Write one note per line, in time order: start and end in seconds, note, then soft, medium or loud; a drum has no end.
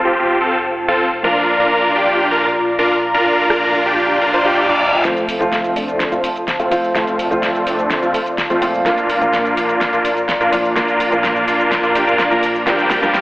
0.00 1.22 F1 medium
0.00 1.21 F3 medium
0.00 1.21 A3 medium
0.00 1.21 C4 medium
0.00 1.20 F4 medium
0.00 1.22 F4 medium
0.00 1.20 C5 medium
0.00 1.20 A5 medium
0.05 0.38 C4 medium
0.05 0.38 F4 medium
0.05 0.38 G4 medium
0.41 0.57 C4 medium
0.41 0.57 F4 medium
0.41 0.57 A4 medium
0.88 1.04 C4 medium
0.88 1.04 F4 medium
0.88 1.04 A4 loud
1.23 5.03 A#1 medium
1.23 5.01 A#2 medium
1.23 5.02 F3 medium
1.23 5.02 A#3 medium
1.23 1.57 D4 medium
1.23 5.02 D4 medium
1.23 1.57 F4 medium
1.23 5.01 F4 medium
1.23 5.03 F4 medium
1.23 1.57 A#4 medium
1.23 5.01 D5 medium
1.23 5.01 A#5 medium
1.60 1.93 D4 medium
1.60 1.93 F4 medium
1.60 1.93 A#4 medium
1.95 2.28 D4 medium
1.95 2.28 F4 medium
1.95 2.28 G4 medium
2.31 2.47 D4 medium
2.31 2.47 F4 medium
2.31 2.47 A#4 medium
2.79 2.95 D4 medium
2.79 2.95 F4 medium
2.79 2.95 A#4 medium
3.14 3.47 D4 medium
3.14 3.47 F4 medium
3.14 3.47 A#4 medium
3.50 3.83 D4 medium
3.50 3.83 F4 medium
3.50 3.83 A#4 loud
3.50 cross-stick medium
3.86 4.19 D4 medium
3.86 4.19 F4 medium
3.86 4.19 G4 medium
4.10 reverse cymbal medium
4.21 4.31 D4 medium
4.21 4.31 F4 medium
4.21 4.31 A#4 medium
4.33 4.43 D4 medium
4.33 4.43 F4 medium
4.33 4.43 C5 loud
4.45 4.66 D4 medium
4.45 4.66 F4 medium
4.45 4.66 G4 loud
4.69 4.85 D4 medium
4.69 4.85 F4 medium
4.69 4.85 D5 loud
5.04 5.38 F1 loud
5.04 5.37 F3 medium
5.04 5.38 A3 medium
5.04 5.38 C4 medium
5.04 5.38 F4 medium
5.04 12.63 F4 medium
5.04 5.38 F4 medium
5.04 6.93 C5 medium
5.04 8.82 A5 medium
5.04 snare soft
5.04 closed hi-hat medium
5.04 shaker soft
5.17 closed hi-hat soft
5.17 shaker soft
5.29 open hi-hat loud
5.29 shaker medium
5.39 5.74 F1 loud
5.39 6.68 F3 medium
5.39 6.68 A3 medium
5.39 5.73 A3 medium
5.39 5.73 C4 medium
5.39 6.69 C4 medium
5.39 5.73 F4 loud
5.39 6.69 F4 medium
5.39 closed hi-hat soft
5.39 shaker soft
5.52 snare soft
5.52 closed hi-hat medium
5.52 shaker soft
5.64 closed hi-hat soft
5.64 shaker soft
5.76 6.10 F1 medium
5.76 6.09 A3 medium
5.76 6.09 C4 medium
5.76 6.09 D4 medium
5.76 open hi-hat medium
5.76 shaker medium
5.88 closed hi-hat soft
5.88 shaker soft
6.00 snare soft
6.00 closed hi-hat medium
6.00 shaker soft
6.12 6.26 F1 medium
6.12 6.28 A3 medium
6.12 6.28 C4 medium
6.12 6.28 F4 medium
6.12 closed hi-hat soft
6.12 shaker soft
6.24 open hi-hat loud
6.24 shaker medium
6.36 closed hi-hat soft
6.36 shaker soft
6.48 snare soft
6.48 closed hi-hat medium
6.48 shaker soft
6.60 6.93 F1 medium
6.60 6.76 A3 medium
6.60 6.76 C4 medium
6.60 6.76 F4 loud
6.60 closed hi-hat soft
6.60 shaker soft
6.71 6.92 F3 medium
6.71 6.92 A3 medium
6.71 6.93 C4 medium
6.71 6.93 F4 medium
6.71 open hi-hat medium
6.71 shaker medium
6.84 shaker soft
6.95 7.29 F1 loud
6.95 7.28 F3 medium
6.95 7.28 A3 medium
6.95 7.28 C4 medium
6.95 7.28 F4 loud
6.95 7.28 F4 medium
6.95 12.63 D5 medium
6.95 snare soft
6.95 closed hi-hat medium
6.95 shaker soft
7.07 closed hi-hat soft
7.07 shaker soft
7.19 open hi-hat loud
7.19 shaker medium
7.30 7.64 F1 medium
7.30 8.59 F3 medium
7.30 8.59 A3 medium
7.30 7.64 A3 medium
7.30 7.64 C4 medium
7.30 8.59 C4 medium
7.30 7.64 F4 loud
7.30 8.60 F4 medium
7.30 closed hi-hat soft
7.30 shaker soft
7.43 snare medium
7.43 closed hi-hat medium
7.43 shaker soft
7.55 closed hi-hat soft
7.55 shaker soft
7.67 8.00 F1 medium
7.67 8.00 A3 medium
7.67 8.00 C4 medium
7.67 8.00 D4 medium
7.67 open hi-hat medium
7.67 shaker medium
7.79 closed hi-hat soft
7.79 shaker soft
7.90 snare medium
7.90 closed hi-hat medium
7.90 shaker soft
8.02 8.16 F1 loud
8.02 8.18 A3 medium
8.02 8.18 C4 medium
8.02 8.18 F4 medium
8.02 closed hi-hat soft
8.02 shaker soft
8.14 open hi-hat loud
8.14 shaker medium
8.26 closed hi-hat soft
8.26 shaker soft
8.38 snare medium
8.38 closed hi-hat medium
8.38 shaker soft
8.50 8.83 F2 medium
8.50 8.66 A3 medium
8.50 8.66 C4 medium
8.50 8.66 F4 loud
8.50 closed hi-hat soft
8.50 shaker soft
8.61 8.83 A#2 medium
8.61 8.83 F3 medium
8.61 8.83 A3 medium
8.61 8.83 C4 medium
8.61 8.83 F4 loud
8.61 open hi-hat medium
8.61 shaker medium
8.75 shaker soft
8.85 9.19 A#1 medium
8.85 9.18 A#2 medium
8.85 9.19 F3 medium
8.85 9.19 A#3 medium
8.85 9.19 D4 medium
8.85 9.19 F4 medium
8.85 13.21 A#5 medium
8.85 snare medium
8.85 closed hi-hat medium
8.85 shaker soft
8.98 closed hi-hat soft
8.98 shaker soft
9.10 open hi-hat loud
9.10 shaker medium
9.20 9.55 A#1 medium
9.20 10.49 A#2 medium
9.20 10.49 F3 medium
9.20 10.50 A#3 medium
9.20 9.54 A#3 medium
9.20 9.54 D4 medium
9.20 10.50 D4 medium
9.20 9.54 F4 loud
9.20 10.50 F4 medium
9.20 closed hi-hat soft
9.20 shaker soft
9.33 snare medium
9.33 closed hi-hat medium
9.33 shaker soft
9.45 closed hi-hat soft
9.45 shaker soft
9.57 9.91 A#1 medium
9.57 9.90 A#3 medium
9.57 9.90 D4 medium
9.57 9.90 F4 medium
9.57 open hi-hat medium
9.57 shaker medium
9.69 closed hi-hat soft
9.69 shaker soft
9.81 snare medium
9.81 closed hi-hat medium
9.81 shaker soft
9.93 10.07 A#1 loud
9.93 10.09 A#3 medium
9.93 10.09 D4 medium
9.93 10.09 F4 medium
9.93 closed hi-hat soft
9.93 shaker soft
10.05 open hi-hat loud
10.05 shaker medium
10.17 closed hi-hat soft
10.17 shaker soft
10.29 snare medium
10.29 closed hi-hat medium
10.29 shaker soft
10.41 10.74 A#1 medium
10.41 10.57 A#3 medium
10.41 10.57 D4 medium
10.41 10.57 F4 loud
10.41 closed hi-hat soft
10.41 shaker soft
10.52 10.73 A#2 medium
10.52 10.73 F3 medium
10.52 10.73 A#3 medium
10.52 10.74 D4 medium
10.52 10.74 F4 medium
10.52 open hi-hat loud
10.52 shaker medium
10.65 shaker soft
10.76 11.10 A#1 medium
10.76 11.09 A#2 medium
10.76 11.09 F3 medium
10.76 11.09 A#3 medium
10.76 11.09 D4 medium
10.76 11.09 F4 medium
10.76 snare medium
10.76 closed hi-hat medium
10.76 shaker soft
10.88 closed hi-hat soft
10.88 shaker soft
11.00 open hi-hat loud
11.00 shaker medium
11.11 11.45 A#1 loud
11.11 12.28 A#2 medium
11.11 12.28 F3 medium
11.11 12.29 A#3 medium
11.11 11.45 A#3 medium
11.11 11.45 D4 medium
11.11 12.29 D4 medium
11.11 11.45 F4 loud
11.11 12.29 F4 medium
11.11 closed hi-hat soft
11.11 shaker soft
11.24 snare medium
11.24 closed hi-hat medium
11.24 shaker soft
11.36 closed hi-hat soft
11.36 shaker soft
11.48 11.81 A#1 medium
11.48 11.81 A#3 medium
11.48 11.81 D4 medium
11.48 11.81 F4 medium
11.48 open hi-hat medium
11.48 shaker medium
11.60 closed hi-hat soft
11.60 shaker soft
11.72 snare medium
11.72 closed hi-hat medium
11.72 shaker soft
11.83 11.93 A#1 loud
11.83 11.93 A#3 medium
11.83 11.93 D4 medium
11.83 11.93 F4 medium
11.83 closed hi-hat soft
11.83 shaker soft
11.95 12.05 A#1 loud
11.95 12.04 A#3 medium
11.95 12.04 D4 medium
11.95 12.04 G4 loud
11.95 open hi-hat loud
11.95 shaker medium
12.07 12.29 A#1 loud
12.07 12.28 A#3 loud
12.07 12.28 D4 medium
12.07 12.28 F4 loud
12.07 closed hi-hat soft
12.07 shaker soft
12.19 snare medium
12.19 closed hi-hat medium
12.19 shaker soft
12.30 12.64 A#1 medium
12.30 12.64 A#2 medium
12.30 12.64 F3 medium
12.30 12.64 A#3 medium
12.30 12.47 A#3 medium
12.30 12.47 D4 medium
12.30 12.64 D4 medium
12.30 12.64 F4 medium
12.30 12.47 A#4 loud
12.30 closed hi-hat soft
12.30 shaker soft
12.43 open hi-hat medium
12.43 shaker medium
12.56 shaker soft
12.66 13.00 G1 loud
12.66 12.99 G2 medium
12.66 13.00 F3 medium
12.66 12.99 G3 medium
12.66 13.00 G3 medium
12.66 13.00 A#3 medium
12.66 13.00 D4 medium
12.66 13.00 F4 medium
12.66 13.00 G4 medium
12.66 13.21 G4 medium
12.66 13.21 F5 medium
12.66 snare medium
12.66 closed hi-hat medium
12.66 shaker soft
12.79 closed hi-hat soft
12.79 shaker soft
12.90 snare medium
12.90 open hi-hat loud
12.90 shaker medium
13.01 13.21 G1 medium
13.01 13.21 G2 medium
13.01 13.21 F3 medium
13.01 13.21 G3 medium
13.01 13.21 A#3 medium
13.01 13.21 D4 medium
13.01 13.21 F4 medium
13.01 13.21 G4 medium
13.01 closed hi-hat soft
13.01 shaker soft
13.14 snare medium
13.14 closed hi-hat medium
13.14 shaker soft